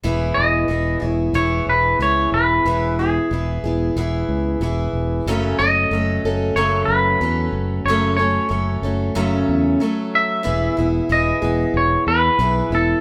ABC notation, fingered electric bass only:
X:1
M:4/4
L:1/8
Q:1/4=92
K:E
V:1 name="Fingered electric bass" clef=bass
E,,, E,,, E,,, E,,, E,,, E,,, C,, E,,, | E,,,2 E,,, E,,, E,,, C,, E,,, E,,, | F,,, F,,, F,,, F,,, F,,, F,,, E,, F,,, | F,,,2 F,,, F,,, F,,, E,, z2 |
E,,, E,,, E,,, E,,, E,,, E,, B,,, E,,, |]